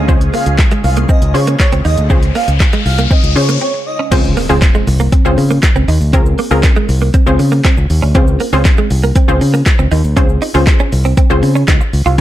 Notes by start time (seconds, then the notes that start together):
Already playing: C#3 G#3 C#4 F4 G#4
0.08 C#2 C4 C#4 F4 G#4 C5, kick, riser, shaker
0.21 closed hi-hat, shaker
0.34 A#3 F5, open hi-hat, shaker
0.46 C#2, muted clean electric guitar stroke, closed hi-hat, shaker
0.58 kick, snare, clap, shaker
0.71 G#3, closed hi-hat, shaker
0.84 C2 F5, muted clean electric guitar stroke, open hi-hat, shaker
0.96 A#3, closed hi-hat, shaker
1.09 C4 D#5, kick, shaker
1.22 C#2, closed hi-hat, shaker
1.34 C#3 C#4 F4 G#4 C5 C#5, muted clean electric guitar stroke, open hi-hat, shaker
1.47 A#3, closed hi-hat, shaker
1.59 C#5, muted clean electric guitar stroke, kick, snare, clap, shaker
1.72 C#2 C4, closed hi-hat, shaker
1.84 D#2 D#4 D#5, open hi-hat, shaker
1.98 D2, closed hi-hat, shaker
2.10 C#2 C4 C#4 F4 G#4 C5, kick, shaker
2.23 closed hi-hat, shaker
2.35 A#3 F5, open hi-hat, shaker
2.48 C#2, muted clean electric guitar stroke, closed hi-hat, shaker
2.60 kick, snare, clap, shaker
2.73 G#3, closed hi-hat, shaker
2.85 C2 F5, muted clean electric guitar stroke, open hi-hat, shaker
2.98 A#3, closed hi-hat, shaker
3.11 C4 D#5, kick, shaker
3.23 C#2, closed hi-hat, shaker
3.36 C#3 C#4 F4 G#4 C5 C#5, muted clean electric guitar stroke, open hi-hat, shaker
3.49 A#3, closed hi-hat, shaker
3.61 C4 C#5
3.74 muted clean electric guitar stroke
3.86 D#5
3.99 C#4
4.11 C#2 C4 C#4 F4 G#4 C5, kick, closed hi-hat, crash, impact, shaker
4.24 shaker
4.37 A#3, open hi-hat, shaker
4.49 C#2 C4 C#4 F4 G#4 C5, muted clean electric guitar stroke, shaker
4.62 kick, snare, clap, closed hi-hat, shaker
4.75 G#3, shaker
4.87 C2, muted clean electric guitar stroke, open hi-hat, shaker
5.00 A#3, shaker
5.12 C4, kick, closed hi-hat, shaker
5.25 C#2 C4 C#4 F4 G#4 C5, shaker
5.38 C#3, muted clean electric guitar stroke, open hi-hat, shaker
5.50 A#3, shaker
5.63 muted clean electric guitar stroke, kick, snare, clap, closed hi-hat, shaker
5.75 C#2 C4, shaker
5.88 D#2 D#4, open hi-hat, shaker
6.01 D2, shaker
6.13 C#2 C4 C#4 F4 G#4 A#4, kick, closed hi-hat, shaker
6.26 shaker
6.38 A#3, open hi-hat, shaker
6.51 C#2 C4 C#4 F4 G#4 A#4, muted clean electric guitar stroke, shaker
6.63 kick, snare, clap, closed hi-hat, shaker
6.76 G#3, shaker
6.89 C2, muted clean electric guitar stroke, open hi-hat, shaker
7.01 A#3, shaker
7.14 C4, kick, closed hi-hat, shaker
7.26 C#2 C4 C#4 F4 G#4 C5, shaker
7.39 C#3, muted clean electric guitar stroke, open hi-hat, shaker
7.52 A#3, shaker
7.64 C4, kick, snare, clap, closed hi-hat, shaker
7.77 C#2, muted clean electric guitar stroke, shaker
7.90 D#2, open hi-hat, shaker
8.02 D2 C#4, shaker
8.15 C#2 C4 C#4 F4 G#4 C5, kick, closed hi-hat, shaker
8.27 shaker
8.40 A#3, open hi-hat, shaker
8.53 C#2 C4 C#4 F4 G#4 C5, muted clean electric guitar stroke, shaker
8.65 kick, snare, clap, closed hi-hat, shaker
8.77 G#3, shaker
8.90 C2, muted clean electric guitar stroke, open hi-hat, shaker
9.03 A#3, shaker
9.15 C4, kick, closed hi-hat, shaker
9.28 C#2 C4 C#4 F4 G#4 C5, shaker
9.41 C#3, muted clean electric guitar stroke, open hi-hat, shaker
9.54 A#3, shaker
9.66 muted clean electric guitar stroke, kick, snare, clap, closed hi-hat, shaker
9.79 C#2 C4, shaker
9.91 D#2 D#4, open hi-hat, shaker
10.04 D2, shaker
10.16 C4 C#4 F4 G#4 C5, kick, closed hi-hat, shaker
10.29 shaker
10.42 D#4, open hi-hat, shaker
10.54 C#2 C4 C#4 F4 G#4 C5, muted clean electric guitar stroke, shaker
10.67 kick, snare, clap, closed hi-hat, shaker
10.79 C#4, shaker
10.92 C2, muted clean electric guitar stroke, open hi-hat, shaker
11.05 C4, shaker
11.17 C4, kick, closed hi-hat, shaker
11.30 C#2 C4 C#4 F4 G#4 C5, shaker
11.43 C#3, muted clean electric guitar stroke, open hi-hat, shaker
11.55 C#4, shaker
11.68 C#2 D#4, kick, snare, clap, closed hi-hat, shaker
11.81 muted clean electric guitar stroke, shaker
11.93 C#2, open hi-hat, shaker
12.06 C2 F4, shaker